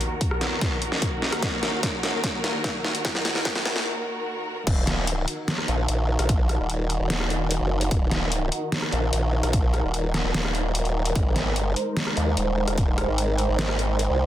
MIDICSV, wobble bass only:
0, 0, Header, 1, 2, 480
1, 0, Start_track
1, 0, Tempo, 405405
1, 1688, Time_signature, 4, 2, 24, 8
1, 16884, End_track
2, 0, Start_track
2, 0, Title_t, "Wobble bass"
2, 0, Program_c, 0, 39
2, 5528, Note_on_c, 0, 27, 95
2, 6229, Note_off_c, 0, 27, 0
2, 6727, Note_on_c, 0, 34, 98
2, 6948, Note_off_c, 0, 34, 0
2, 6967, Note_on_c, 0, 34, 99
2, 7309, Note_off_c, 0, 34, 0
2, 7328, Note_on_c, 0, 34, 100
2, 7789, Note_off_c, 0, 34, 0
2, 7809, Note_on_c, 0, 27, 97
2, 8270, Note_off_c, 0, 27, 0
2, 8288, Note_on_c, 0, 27, 103
2, 8989, Note_off_c, 0, 27, 0
2, 9009, Note_on_c, 0, 30, 98
2, 9349, Note_off_c, 0, 30, 0
2, 9368, Note_on_c, 0, 27, 98
2, 10069, Note_off_c, 0, 27, 0
2, 10567, Note_on_c, 0, 34, 98
2, 10789, Note_off_c, 0, 34, 0
2, 10807, Note_on_c, 0, 34, 100
2, 11149, Note_off_c, 0, 34, 0
2, 11169, Note_on_c, 0, 34, 100
2, 11629, Note_off_c, 0, 34, 0
2, 11648, Note_on_c, 0, 27, 95
2, 12109, Note_off_c, 0, 27, 0
2, 12129, Note_on_c, 0, 27, 101
2, 12229, Note_off_c, 0, 27, 0
2, 12247, Note_on_c, 0, 27, 96
2, 13189, Note_off_c, 0, 27, 0
2, 13208, Note_on_c, 0, 32, 98
2, 13705, Note_off_c, 0, 32, 0
2, 13705, Note_on_c, 0, 31, 98
2, 13909, Note_off_c, 0, 31, 0
2, 14408, Note_on_c, 0, 39, 96
2, 14629, Note_off_c, 0, 39, 0
2, 14648, Note_on_c, 0, 27, 100
2, 14989, Note_off_c, 0, 27, 0
2, 15008, Note_on_c, 0, 27, 100
2, 15469, Note_off_c, 0, 27, 0
2, 15488, Note_on_c, 0, 32, 97
2, 15949, Note_off_c, 0, 32, 0
2, 15968, Note_on_c, 0, 32, 102
2, 16669, Note_off_c, 0, 32, 0
2, 16688, Note_on_c, 0, 36, 101
2, 16884, Note_off_c, 0, 36, 0
2, 16884, End_track
0, 0, End_of_file